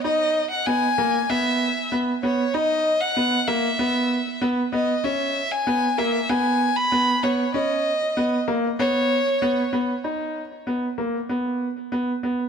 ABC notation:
X:1
M:4/4
L:1/16
Q:1/4=96
K:G#m
V:1 name="Violin"
d3 f g4 e4 z2 c2 | d3 f3 e6 z2 d2 | e3 g3 e2 g3 b3 c2 | d6 z2 c6 z2 |
z16 |]
V:2 name="Grand piano"
D4 B,2 A,2 B,4 B,2 B,2 | D4 B,2 A,2 B,4 B,2 B,2 | C4 B,2 A,2 B,4 B,2 B,2 | C4 B,2 A,2 B,4 B,2 B,2 |
D4 B,2 A,2 B,4 B,2 B,2 |]